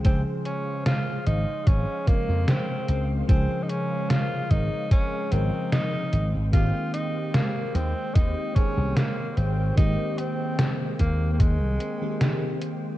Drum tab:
HH |xxxxxxxx|xxxxxxxx|xxxxxxxx|xxxxxxxx|
SD |--o---o-|--o---o-|--o---o-|--o---o-|
BD |o---oo--|o--oo---|o---oo--|o--oo---|